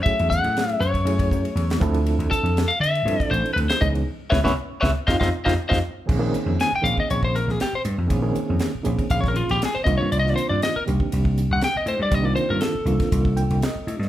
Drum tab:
CC |----------------|----------------|----------------|x---------------|
RD |xx-xxx-xxx-xxx-x|xx-xxx-xxx-xxx-x|----------------|--x-x-x-x-x-x-x-|
HH |--p---p---p---p-|--p---p---p---p-|----------------|--p-p-p-p-p-p-p-|
SD |----o--------o--|----o--------o--|--oo--o-oo-o-o--|----o-----ooo---|
BD |o-o----o-oo---o-|--o------o----o-|--oo--o-oo-o-o--|o------o-o------|

CC |----------------|----------------|----------------|
RD |x-x-x-xxx-xxx-x-|x-x-x-x-x-x-x-x-|x-x-x-xxx-xxx-x-|
HH |p-p-p-p-p-p-p-p-|p-p-p-p-p-p-p-p-|p-p-p-p-p-p-p-p-|
SD |----o----o-oo---|-o--o-------o---|----o--o----o--o|
BD |o------ooo----o-|-------o-o------|o------ooo------|